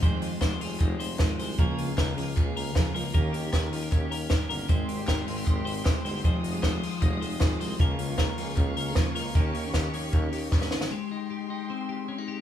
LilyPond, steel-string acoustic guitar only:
\new Staff \with { instrumentName = "Steel-string acoustic guitar" } { \time 4/4 \key aes \major \tempo 4 = 154 <f, c ees aes c' aes'>8. <ees aes c' aes'>8. <ees aes c' aes'>8. <ees aes c' aes'>8. <ees aes c' aes'>8 <ees aes c' aes'>8 | <des f bes f' aes'>8. <bes f' aes'>8. <f bes f' aes'>8. <bes f' aes'>8. <f bes f' aes'>8 <f bes f' aes'>8 | <ees bes des' g'>8. <bes des' g'>8. <ees bes des' g'>8. <bes des' g'>8. <ees bes des' g'>8 <ees bes des' g'>8 | <aes c' ees' g'>8. <c' ees' g'>8. <aes c' ees' g'>8. <c' ees' g'>8. <aes c' ees' g'>8 <aes c' ees' g'>8 |
<f, c ees aes c' aes'>8. <ees aes c' aes'>8. <ees aes c' aes'>8. <ees aes c' aes'>8. <ees aes c' aes'>8 <ees aes c' aes'>8 | <des f bes f' aes'>8. <bes f' aes'>8. <f bes f' aes'>8. <bes f' aes'>8. <f bes f' aes'>8 <f bes f' aes'>8 | <ees bes des' g'>8. <bes des' g'>8. <ees bes des' g'>8. <bes des' g'>8. <ees bes des' g'>8 <ees bes des' g'>8 | r1 | }